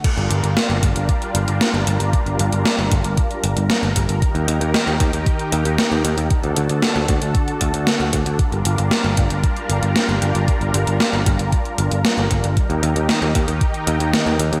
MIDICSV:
0, 0, Header, 1, 4, 480
1, 0, Start_track
1, 0, Key_signature, -2, "minor"
1, 0, Tempo, 521739
1, 42, Time_signature, 4, 2, 24, 8
1, 13432, End_track
2, 0, Start_track
2, 0, Title_t, "Analog synth pad"
2, 0, Program_c, 0, 89
2, 42, Note_on_c, 0, 55, 82
2, 42, Note_on_c, 0, 62, 72
2, 42, Note_on_c, 0, 70, 85
2, 43, Note_on_c, 0, 65, 70
2, 3845, Note_off_c, 0, 55, 0
2, 3845, Note_off_c, 0, 62, 0
2, 3846, Note_off_c, 0, 65, 0
2, 3883, Note_on_c, 0, 67, 71
2, 3885, Note_on_c, 0, 63, 72
2, 3886, Note_on_c, 0, 51, 78
2, 5765, Note_off_c, 0, 70, 0
2, 5783, Note_off_c, 0, 67, 0
2, 5784, Note_off_c, 0, 63, 0
2, 5785, Note_off_c, 0, 51, 0
2, 5802, Note_on_c, 0, 62, 71
2, 5803, Note_on_c, 0, 50, 80
2, 5803, Note_on_c, 0, 69, 90
2, 5804, Note_on_c, 0, 66, 75
2, 7703, Note_off_c, 0, 50, 0
2, 7703, Note_off_c, 0, 69, 0
2, 7704, Note_off_c, 0, 66, 0
2, 7722, Note_on_c, 0, 55, 81
2, 7722, Note_on_c, 0, 65, 75
2, 7722, Note_on_c, 0, 70, 86
2, 11525, Note_off_c, 0, 55, 0
2, 11525, Note_off_c, 0, 62, 0
2, 11525, Note_off_c, 0, 65, 0
2, 11565, Note_on_c, 0, 63, 74
2, 11567, Note_on_c, 0, 67, 74
2, 11568, Note_on_c, 0, 51, 81
2, 13432, Note_off_c, 0, 51, 0
2, 13432, Note_off_c, 0, 63, 0
2, 13432, Note_off_c, 0, 67, 0
2, 13432, Note_off_c, 0, 70, 0
2, 13432, End_track
3, 0, Start_track
3, 0, Title_t, "Picked electric bass"
3, 0, Program_c, 1, 34
3, 160, Note_on_c, 1, 31, 70
3, 260, Note_off_c, 1, 31, 0
3, 280, Note_on_c, 1, 31, 88
3, 380, Note_off_c, 1, 31, 0
3, 399, Note_on_c, 1, 31, 75
3, 500, Note_off_c, 1, 31, 0
3, 641, Note_on_c, 1, 31, 76
3, 741, Note_off_c, 1, 31, 0
3, 762, Note_on_c, 1, 31, 93
3, 861, Note_off_c, 1, 31, 0
3, 879, Note_on_c, 1, 31, 74
3, 980, Note_off_c, 1, 31, 0
3, 1239, Note_on_c, 1, 31, 89
3, 1340, Note_off_c, 1, 31, 0
3, 1361, Note_on_c, 1, 31, 74
3, 1461, Note_off_c, 1, 31, 0
3, 1599, Note_on_c, 1, 31, 73
3, 1700, Note_off_c, 1, 31, 0
3, 1720, Note_on_c, 1, 31, 86
3, 1820, Note_off_c, 1, 31, 0
3, 1841, Note_on_c, 1, 31, 79
3, 1941, Note_off_c, 1, 31, 0
3, 2080, Note_on_c, 1, 31, 72
3, 2180, Note_off_c, 1, 31, 0
3, 2201, Note_on_c, 1, 31, 88
3, 2301, Note_off_c, 1, 31, 0
3, 2323, Note_on_c, 1, 31, 77
3, 2422, Note_off_c, 1, 31, 0
3, 2563, Note_on_c, 1, 31, 71
3, 2662, Note_off_c, 1, 31, 0
3, 2683, Note_on_c, 1, 31, 95
3, 2782, Note_off_c, 1, 31, 0
3, 2801, Note_on_c, 1, 31, 76
3, 2901, Note_off_c, 1, 31, 0
3, 3162, Note_on_c, 1, 31, 89
3, 3261, Note_off_c, 1, 31, 0
3, 3281, Note_on_c, 1, 31, 79
3, 3381, Note_off_c, 1, 31, 0
3, 3521, Note_on_c, 1, 31, 74
3, 3621, Note_off_c, 1, 31, 0
3, 3643, Note_on_c, 1, 31, 90
3, 3742, Note_off_c, 1, 31, 0
3, 3760, Note_on_c, 1, 31, 80
3, 3860, Note_off_c, 1, 31, 0
3, 4000, Note_on_c, 1, 39, 73
3, 4100, Note_off_c, 1, 39, 0
3, 4120, Note_on_c, 1, 39, 90
3, 4220, Note_off_c, 1, 39, 0
3, 4241, Note_on_c, 1, 39, 81
3, 4341, Note_off_c, 1, 39, 0
3, 4482, Note_on_c, 1, 39, 71
3, 4581, Note_off_c, 1, 39, 0
3, 4602, Note_on_c, 1, 39, 101
3, 4701, Note_off_c, 1, 39, 0
3, 4722, Note_on_c, 1, 39, 74
3, 4821, Note_off_c, 1, 39, 0
3, 5083, Note_on_c, 1, 39, 89
3, 5182, Note_off_c, 1, 39, 0
3, 5203, Note_on_c, 1, 39, 79
3, 5302, Note_off_c, 1, 39, 0
3, 5442, Note_on_c, 1, 39, 75
3, 5541, Note_off_c, 1, 39, 0
3, 5563, Note_on_c, 1, 39, 86
3, 5662, Note_off_c, 1, 39, 0
3, 5682, Note_on_c, 1, 39, 79
3, 5781, Note_off_c, 1, 39, 0
3, 5923, Note_on_c, 1, 38, 74
3, 6022, Note_off_c, 1, 38, 0
3, 6043, Note_on_c, 1, 38, 85
3, 6142, Note_off_c, 1, 38, 0
3, 6163, Note_on_c, 1, 38, 76
3, 6262, Note_off_c, 1, 38, 0
3, 6402, Note_on_c, 1, 38, 73
3, 6501, Note_off_c, 1, 38, 0
3, 6522, Note_on_c, 1, 38, 97
3, 6621, Note_off_c, 1, 38, 0
3, 6642, Note_on_c, 1, 38, 76
3, 6741, Note_off_c, 1, 38, 0
3, 7002, Note_on_c, 1, 38, 85
3, 7101, Note_off_c, 1, 38, 0
3, 7122, Note_on_c, 1, 38, 75
3, 7221, Note_off_c, 1, 38, 0
3, 7360, Note_on_c, 1, 38, 72
3, 7460, Note_off_c, 1, 38, 0
3, 7481, Note_on_c, 1, 38, 89
3, 7581, Note_off_c, 1, 38, 0
3, 7600, Note_on_c, 1, 38, 77
3, 7700, Note_off_c, 1, 38, 0
3, 7839, Note_on_c, 1, 31, 73
3, 7940, Note_off_c, 1, 31, 0
3, 7959, Note_on_c, 1, 31, 89
3, 8060, Note_off_c, 1, 31, 0
3, 8080, Note_on_c, 1, 31, 80
3, 8180, Note_off_c, 1, 31, 0
3, 8320, Note_on_c, 1, 31, 74
3, 8420, Note_off_c, 1, 31, 0
3, 8442, Note_on_c, 1, 31, 95
3, 8541, Note_off_c, 1, 31, 0
3, 8559, Note_on_c, 1, 31, 76
3, 8660, Note_off_c, 1, 31, 0
3, 8920, Note_on_c, 1, 31, 93
3, 9020, Note_off_c, 1, 31, 0
3, 9039, Note_on_c, 1, 31, 78
3, 9140, Note_off_c, 1, 31, 0
3, 9280, Note_on_c, 1, 31, 71
3, 9380, Note_off_c, 1, 31, 0
3, 9400, Note_on_c, 1, 31, 83
3, 9500, Note_off_c, 1, 31, 0
3, 9519, Note_on_c, 1, 31, 77
3, 9620, Note_off_c, 1, 31, 0
3, 9760, Note_on_c, 1, 31, 72
3, 9860, Note_off_c, 1, 31, 0
3, 9881, Note_on_c, 1, 31, 92
3, 9981, Note_off_c, 1, 31, 0
3, 10000, Note_on_c, 1, 31, 78
3, 10100, Note_off_c, 1, 31, 0
3, 10241, Note_on_c, 1, 31, 74
3, 10341, Note_off_c, 1, 31, 0
3, 10364, Note_on_c, 1, 31, 93
3, 10462, Note_off_c, 1, 31, 0
3, 10481, Note_on_c, 1, 31, 76
3, 10581, Note_off_c, 1, 31, 0
3, 10841, Note_on_c, 1, 31, 94
3, 10941, Note_off_c, 1, 31, 0
3, 10961, Note_on_c, 1, 31, 78
3, 11061, Note_off_c, 1, 31, 0
3, 11202, Note_on_c, 1, 31, 77
3, 11301, Note_off_c, 1, 31, 0
3, 11322, Note_on_c, 1, 31, 84
3, 11421, Note_off_c, 1, 31, 0
3, 11443, Note_on_c, 1, 31, 80
3, 11542, Note_off_c, 1, 31, 0
3, 11681, Note_on_c, 1, 39, 73
3, 11781, Note_off_c, 1, 39, 0
3, 11800, Note_on_c, 1, 39, 92
3, 11900, Note_off_c, 1, 39, 0
3, 11921, Note_on_c, 1, 39, 83
3, 12021, Note_off_c, 1, 39, 0
3, 12161, Note_on_c, 1, 39, 74
3, 12261, Note_off_c, 1, 39, 0
3, 12283, Note_on_c, 1, 39, 97
3, 12382, Note_off_c, 1, 39, 0
3, 12401, Note_on_c, 1, 39, 77
3, 12501, Note_off_c, 1, 39, 0
3, 12763, Note_on_c, 1, 39, 96
3, 12862, Note_off_c, 1, 39, 0
3, 12882, Note_on_c, 1, 39, 75
3, 12981, Note_off_c, 1, 39, 0
3, 13121, Note_on_c, 1, 39, 76
3, 13221, Note_off_c, 1, 39, 0
3, 13242, Note_on_c, 1, 39, 89
3, 13341, Note_off_c, 1, 39, 0
3, 13363, Note_on_c, 1, 39, 81
3, 13432, Note_off_c, 1, 39, 0
3, 13432, End_track
4, 0, Start_track
4, 0, Title_t, "Drums"
4, 40, Note_on_c, 9, 42, 53
4, 40, Note_on_c, 9, 49, 89
4, 41, Note_on_c, 9, 36, 111
4, 132, Note_off_c, 9, 42, 0
4, 132, Note_off_c, 9, 49, 0
4, 133, Note_off_c, 9, 36, 0
4, 161, Note_on_c, 9, 42, 25
4, 253, Note_off_c, 9, 42, 0
4, 281, Note_on_c, 9, 42, 88
4, 373, Note_off_c, 9, 42, 0
4, 402, Note_on_c, 9, 42, 52
4, 494, Note_off_c, 9, 42, 0
4, 522, Note_on_c, 9, 38, 111
4, 522, Note_on_c, 9, 42, 53
4, 614, Note_off_c, 9, 38, 0
4, 614, Note_off_c, 9, 42, 0
4, 643, Note_on_c, 9, 42, 25
4, 735, Note_off_c, 9, 42, 0
4, 762, Note_on_c, 9, 36, 101
4, 762, Note_on_c, 9, 42, 92
4, 854, Note_off_c, 9, 36, 0
4, 854, Note_off_c, 9, 42, 0
4, 881, Note_on_c, 9, 42, 52
4, 973, Note_off_c, 9, 42, 0
4, 1001, Note_on_c, 9, 42, 51
4, 1002, Note_on_c, 9, 36, 108
4, 1093, Note_off_c, 9, 42, 0
4, 1094, Note_off_c, 9, 36, 0
4, 1121, Note_on_c, 9, 42, 27
4, 1213, Note_off_c, 9, 42, 0
4, 1240, Note_on_c, 9, 42, 97
4, 1332, Note_off_c, 9, 42, 0
4, 1360, Note_on_c, 9, 42, 52
4, 1452, Note_off_c, 9, 42, 0
4, 1481, Note_on_c, 9, 38, 118
4, 1481, Note_on_c, 9, 42, 53
4, 1573, Note_off_c, 9, 38, 0
4, 1573, Note_off_c, 9, 42, 0
4, 1601, Note_on_c, 9, 42, 26
4, 1693, Note_off_c, 9, 42, 0
4, 1721, Note_on_c, 9, 42, 90
4, 1813, Note_off_c, 9, 42, 0
4, 1841, Note_on_c, 9, 42, 50
4, 1933, Note_off_c, 9, 42, 0
4, 1962, Note_on_c, 9, 36, 115
4, 1963, Note_on_c, 9, 42, 54
4, 2054, Note_off_c, 9, 36, 0
4, 2055, Note_off_c, 9, 42, 0
4, 2083, Note_on_c, 9, 42, 26
4, 2175, Note_off_c, 9, 42, 0
4, 2203, Note_on_c, 9, 42, 97
4, 2295, Note_off_c, 9, 42, 0
4, 2323, Note_on_c, 9, 42, 51
4, 2415, Note_off_c, 9, 42, 0
4, 2443, Note_on_c, 9, 38, 120
4, 2443, Note_on_c, 9, 42, 53
4, 2535, Note_off_c, 9, 38, 0
4, 2535, Note_off_c, 9, 42, 0
4, 2562, Note_on_c, 9, 42, 25
4, 2654, Note_off_c, 9, 42, 0
4, 2682, Note_on_c, 9, 42, 94
4, 2683, Note_on_c, 9, 36, 104
4, 2774, Note_off_c, 9, 42, 0
4, 2775, Note_off_c, 9, 36, 0
4, 2801, Note_on_c, 9, 42, 52
4, 2893, Note_off_c, 9, 42, 0
4, 2920, Note_on_c, 9, 42, 53
4, 2923, Note_on_c, 9, 36, 115
4, 3012, Note_off_c, 9, 42, 0
4, 3015, Note_off_c, 9, 36, 0
4, 3042, Note_on_c, 9, 42, 27
4, 3134, Note_off_c, 9, 42, 0
4, 3161, Note_on_c, 9, 42, 96
4, 3253, Note_off_c, 9, 42, 0
4, 3281, Note_on_c, 9, 42, 54
4, 3373, Note_off_c, 9, 42, 0
4, 3402, Note_on_c, 9, 38, 112
4, 3402, Note_on_c, 9, 42, 52
4, 3494, Note_off_c, 9, 38, 0
4, 3494, Note_off_c, 9, 42, 0
4, 3523, Note_on_c, 9, 42, 26
4, 3615, Note_off_c, 9, 42, 0
4, 3643, Note_on_c, 9, 36, 61
4, 3643, Note_on_c, 9, 42, 98
4, 3735, Note_off_c, 9, 36, 0
4, 3735, Note_off_c, 9, 42, 0
4, 3763, Note_on_c, 9, 42, 52
4, 3855, Note_off_c, 9, 42, 0
4, 3883, Note_on_c, 9, 36, 114
4, 3884, Note_on_c, 9, 42, 53
4, 3975, Note_off_c, 9, 36, 0
4, 3976, Note_off_c, 9, 42, 0
4, 4003, Note_on_c, 9, 42, 26
4, 4095, Note_off_c, 9, 42, 0
4, 4123, Note_on_c, 9, 42, 94
4, 4215, Note_off_c, 9, 42, 0
4, 4244, Note_on_c, 9, 42, 49
4, 4336, Note_off_c, 9, 42, 0
4, 4364, Note_on_c, 9, 38, 115
4, 4364, Note_on_c, 9, 42, 50
4, 4456, Note_off_c, 9, 38, 0
4, 4456, Note_off_c, 9, 42, 0
4, 4484, Note_on_c, 9, 42, 23
4, 4576, Note_off_c, 9, 42, 0
4, 4602, Note_on_c, 9, 42, 92
4, 4603, Note_on_c, 9, 36, 110
4, 4694, Note_off_c, 9, 42, 0
4, 4695, Note_off_c, 9, 36, 0
4, 4722, Note_on_c, 9, 42, 50
4, 4814, Note_off_c, 9, 42, 0
4, 4843, Note_on_c, 9, 36, 115
4, 4843, Note_on_c, 9, 42, 52
4, 4935, Note_off_c, 9, 36, 0
4, 4935, Note_off_c, 9, 42, 0
4, 4962, Note_on_c, 9, 42, 25
4, 5054, Note_off_c, 9, 42, 0
4, 5082, Note_on_c, 9, 42, 94
4, 5174, Note_off_c, 9, 42, 0
4, 5201, Note_on_c, 9, 42, 52
4, 5293, Note_off_c, 9, 42, 0
4, 5322, Note_on_c, 9, 38, 120
4, 5322, Note_on_c, 9, 42, 49
4, 5414, Note_off_c, 9, 38, 0
4, 5414, Note_off_c, 9, 42, 0
4, 5443, Note_on_c, 9, 42, 25
4, 5535, Note_off_c, 9, 42, 0
4, 5563, Note_on_c, 9, 42, 97
4, 5655, Note_off_c, 9, 42, 0
4, 5682, Note_on_c, 9, 42, 53
4, 5774, Note_off_c, 9, 42, 0
4, 5800, Note_on_c, 9, 42, 52
4, 5802, Note_on_c, 9, 36, 117
4, 5892, Note_off_c, 9, 42, 0
4, 5894, Note_off_c, 9, 36, 0
4, 5920, Note_on_c, 9, 42, 25
4, 6012, Note_off_c, 9, 42, 0
4, 6040, Note_on_c, 9, 42, 89
4, 6132, Note_off_c, 9, 42, 0
4, 6159, Note_on_c, 9, 42, 48
4, 6251, Note_off_c, 9, 42, 0
4, 6279, Note_on_c, 9, 38, 115
4, 6279, Note_on_c, 9, 42, 48
4, 6371, Note_off_c, 9, 38, 0
4, 6371, Note_off_c, 9, 42, 0
4, 6399, Note_on_c, 9, 42, 25
4, 6491, Note_off_c, 9, 42, 0
4, 6518, Note_on_c, 9, 42, 91
4, 6522, Note_on_c, 9, 36, 108
4, 6610, Note_off_c, 9, 42, 0
4, 6614, Note_off_c, 9, 36, 0
4, 6639, Note_on_c, 9, 42, 50
4, 6731, Note_off_c, 9, 42, 0
4, 6759, Note_on_c, 9, 42, 51
4, 6761, Note_on_c, 9, 36, 121
4, 6851, Note_off_c, 9, 42, 0
4, 6853, Note_off_c, 9, 36, 0
4, 6879, Note_on_c, 9, 42, 25
4, 6971, Note_off_c, 9, 42, 0
4, 7000, Note_on_c, 9, 42, 94
4, 7001, Note_on_c, 9, 36, 62
4, 7092, Note_off_c, 9, 42, 0
4, 7093, Note_off_c, 9, 36, 0
4, 7120, Note_on_c, 9, 42, 51
4, 7212, Note_off_c, 9, 42, 0
4, 7240, Note_on_c, 9, 38, 117
4, 7240, Note_on_c, 9, 42, 49
4, 7332, Note_off_c, 9, 38, 0
4, 7332, Note_off_c, 9, 42, 0
4, 7361, Note_on_c, 9, 42, 24
4, 7453, Note_off_c, 9, 42, 0
4, 7479, Note_on_c, 9, 42, 87
4, 7481, Note_on_c, 9, 36, 58
4, 7571, Note_off_c, 9, 42, 0
4, 7573, Note_off_c, 9, 36, 0
4, 7600, Note_on_c, 9, 42, 51
4, 7692, Note_off_c, 9, 42, 0
4, 7720, Note_on_c, 9, 42, 52
4, 7721, Note_on_c, 9, 36, 113
4, 7812, Note_off_c, 9, 42, 0
4, 7813, Note_off_c, 9, 36, 0
4, 7842, Note_on_c, 9, 42, 23
4, 7934, Note_off_c, 9, 42, 0
4, 7960, Note_on_c, 9, 42, 90
4, 8052, Note_off_c, 9, 42, 0
4, 8081, Note_on_c, 9, 42, 49
4, 8173, Note_off_c, 9, 42, 0
4, 8200, Note_on_c, 9, 38, 113
4, 8200, Note_on_c, 9, 42, 48
4, 8292, Note_off_c, 9, 38, 0
4, 8292, Note_off_c, 9, 42, 0
4, 8319, Note_on_c, 9, 42, 23
4, 8411, Note_off_c, 9, 42, 0
4, 8439, Note_on_c, 9, 42, 84
4, 8442, Note_on_c, 9, 36, 102
4, 8531, Note_off_c, 9, 42, 0
4, 8534, Note_off_c, 9, 36, 0
4, 8559, Note_on_c, 9, 42, 49
4, 8651, Note_off_c, 9, 42, 0
4, 8681, Note_on_c, 9, 42, 52
4, 8682, Note_on_c, 9, 36, 107
4, 8773, Note_off_c, 9, 42, 0
4, 8774, Note_off_c, 9, 36, 0
4, 8800, Note_on_c, 9, 42, 24
4, 8892, Note_off_c, 9, 42, 0
4, 8920, Note_on_c, 9, 42, 86
4, 9012, Note_off_c, 9, 42, 0
4, 9040, Note_on_c, 9, 42, 48
4, 9132, Note_off_c, 9, 42, 0
4, 9161, Note_on_c, 9, 38, 111
4, 9161, Note_on_c, 9, 42, 50
4, 9253, Note_off_c, 9, 38, 0
4, 9253, Note_off_c, 9, 42, 0
4, 9282, Note_on_c, 9, 42, 25
4, 9374, Note_off_c, 9, 42, 0
4, 9403, Note_on_c, 9, 42, 85
4, 9495, Note_off_c, 9, 42, 0
4, 9522, Note_on_c, 9, 42, 50
4, 9614, Note_off_c, 9, 42, 0
4, 9642, Note_on_c, 9, 42, 52
4, 9643, Note_on_c, 9, 36, 112
4, 9734, Note_off_c, 9, 42, 0
4, 9735, Note_off_c, 9, 36, 0
4, 9763, Note_on_c, 9, 42, 24
4, 9855, Note_off_c, 9, 42, 0
4, 9883, Note_on_c, 9, 42, 90
4, 9975, Note_off_c, 9, 42, 0
4, 10003, Note_on_c, 9, 42, 48
4, 10095, Note_off_c, 9, 42, 0
4, 10123, Note_on_c, 9, 38, 111
4, 10123, Note_on_c, 9, 42, 47
4, 10215, Note_off_c, 9, 38, 0
4, 10215, Note_off_c, 9, 42, 0
4, 10243, Note_on_c, 9, 42, 22
4, 10335, Note_off_c, 9, 42, 0
4, 10363, Note_on_c, 9, 36, 101
4, 10363, Note_on_c, 9, 42, 87
4, 10455, Note_off_c, 9, 36, 0
4, 10455, Note_off_c, 9, 42, 0
4, 10482, Note_on_c, 9, 42, 49
4, 10574, Note_off_c, 9, 42, 0
4, 10603, Note_on_c, 9, 36, 104
4, 10603, Note_on_c, 9, 42, 50
4, 10695, Note_off_c, 9, 36, 0
4, 10695, Note_off_c, 9, 42, 0
4, 10721, Note_on_c, 9, 42, 24
4, 10813, Note_off_c, 9, 42, 0
4, 10841, Note_on_c, 9, 42, 89
4, 10933, Note_off_c, 9, 42, 0
4, 10962, Note_on_c, 9, 42, 50
4, 11054, Note_off_c, 9, 42, 0
4, 11083, Note_on_c, 9, 38, 115
4, 11083, Note_on_c, 9, 42, 50
4, 11175, Note_off_c, 9, 38, 0
4, 11175, Note_off_c, 9, 42, 0
4, 11202, Note_on_c, 9, 42, 24
4, 11294, Note_off_c, 9, 42, 0
4, 11322, Note_on_c, 9, 42, 88
4, 11323, Note_on_c, 9, 36, 58
4, 11414, Note_off_c, 9, 42, 0
4, 11415, Note_off_c, 9, 36, 0
4, 11443, Note_on_c, 9, 42, 48
4, 11535, Note_off_c, 9, 42, 0
4, 11563, Note_on_c, 9, 36, 107
4, 11563, Note_on_c, 9, 42, 54
4, 11655, Note_off_c, 9, 36, 0
4, 11655, Note_off_c, 9, 42, 0
4, 11684, Note_on_c, 9, 42, 25
4, 11776, Note_off_c, 9, 42, 0
4, 11804, Note_on_c, 9, 42, 85
4, 11896, Note_off_c, 9, 42, 0
4, 11924, Note_on_c, 9, 42, 49
4, 12016, Note_off_c, 9, 42, 0
4, 12043, Note_on_c, 9, 38, 109
4, 12043, Note_on_c, 9, 42, 50
4, 12135, Note_off_c, 9, 38, 0
4, 12135, Note_off_c, 9, 42, 0
4, 12163, Note_on_c, 9, 42, 24
4, 12255, Note_off_c, 9, 42, 0
4, 12283, Note_on_c, 9, 36, 101
4, 12283, Note_on_c, 9, 42, 88
4, 12375, Note_off_c, 9, 36, 0
4, 12375, Note_off_c, 9, 42, 0
4, 12402, Note_on_c, 9, 42, 49
4, 12494, Note_off_c, 9, 42, 0
4, 12523, Note_on_c, 9, 36, 107
4, 12523, Note_on_c, 9, 42, 51
4, 12615, Note_off_c, 9, 36, 0
4, 12615, Note_off_c, 9, 42, 0
4, 12642, Note_on_c, 9, 42, 25
4, 12734, Note_off_c, 9, 42, 0
4, 12762, Note_on_c, 9, 42, 92
4, 12854, Note_off_c, 9, 42, 0
4, 12883, Note_on_c, 9, 42, 53
4, 12975, Note_off_c, 9, 42, 0
4, 13004, Note_on_c, 9, 38, 112
4, 13004, Note_on_c, 9, 42, 48
4, 13096, Note_off_c, 9, 38, 0
4, 13096, Note_off_c, 9, 42, 0
4, 13124, Note_on_c, 9, 42, 25
4, 13216, Note_off_c, 9, 42, 0
4, 13243, Note_on_c, 9, 42, 87
4, 13335, Note_off_c, 9, 42, 0
4, 13365, Note_on_c, 9, 42, 50
4, 13432, Note_off_c, 9, 42, 0
4, 13432, End_track
0, 0, End_of_file